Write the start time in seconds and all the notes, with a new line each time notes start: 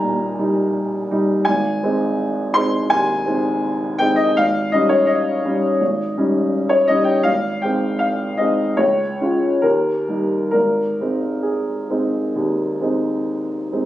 Already playing: D#2 G3 D#4 G5 G#5 A#5
0.03 A#2
0.38 G3 D#4
1.11 G3 D#4
1.45 G#1 G#5
1.83 G#3 C4 D#4
2.54 G#3 C4 D#4 C6
2.90 D#2 G#5
3.26 G#3 C4 D#4
3.98 G#3 C4 D#4 G5
4.16 D#5
4.37 G#1 F5
4.72 G3 C#4 D#4 D#5
4.89 C#5
5.07 D#5
5.45 G3 C#4 D#4
5.81 G#1
6.17 G3 C#4 D#4
6.69 C#5
6.88 G3 C#4 D#4 D#5
7.04 G5
7.23 G#1 F5
7.62 G#3 C4 D#4 G5
7.99 F5
8.37 G#3 C4 D#4 D#5
8.77 C#2 C#5
9.21 G#3 C#4 F4
9.62 D#2 A#4
10.08 G3 A#3 D#4
10.51 G#1 A#4
11.01 G#3 C4 D#4
11.43 G#4
11.90 G#3 C4 D#4
12.35 D#2
12.81 G#3 C4 D#4
13.72 G#3 C4 D#4